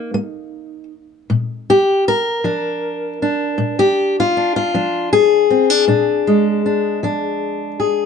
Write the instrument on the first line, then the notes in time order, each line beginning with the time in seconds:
steel-string acoustic guitar
Already playing: A#3 D#4
0.14 A#3
1.30 A#2
1.70 G4
2.08 A#4
2.44 F3 D4
3.22 D4
3.58 A#2
3.79 G4
4.20 F4
4.37 D4
4.56 F4
4.74 F3 D4
5.13 G#4
5.50 C4
5.70 D4
5.88 A#2 D4
6.27 G#3
6.66 D4
7.03 F3 D4
7.80 G#4